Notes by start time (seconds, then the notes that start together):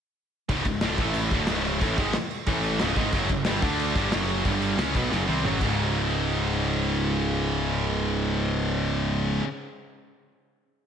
0.49 C#1 C#2 G#2 C#3, kick, crash
0.65 C#1 C#2 G#2, kick, crash
0.81 D1 D2 A2 D3, snare, crash
0.98 A1 A2 E3 A3, kick, crash
1.13 crash
1.31 D1 D2 A2 D3, kick, crash
1.47 C#1 C#2 G#2 C#3, snare, crash
1.65 crash
1.81 A1 A2 E3 A3, kick, crash
1.98 G#1 G#2 D#3 G#3, kick, crash
2.13 snare, crash
2.31 crash
2.46 A1 A2 E3 A3, kick, crash
2.63 crash
2.80 C#1 C#2 G#2 C#3, snare, crash
2.96 G#1 G#2 D#3 G#3, kick, crash
3.12 F#1 F#2 C#3 F#3, kick, crash
3.29 F#1 F#2 C#3, kick, crash
3.45 G1 G2 D3 G3, snare, crash
3.62 D2 D3 A3 D4, kick, crash
3.79 crash
3.95 G1 G2 D3 G3, kick, crash
4.12 F#1 F#2 C#3 F#3, snare, crash
4.29 crash
4.45 G1 G2 D3 G3, kick, crash
4.62 crash
4.78 C#2 C#3 G#3 C#4, snare, crash
4.95 B1 B2 F#3 B3, kick, crash
5.12 F#1 F#2 C#3 F#3, snare
5.28 C2 C3 G3 C4, high tom
5.43 F#1 F#2 C#3 F#3, mid tom
5.61 C#1 C#2 G#2 C#3, kick, crash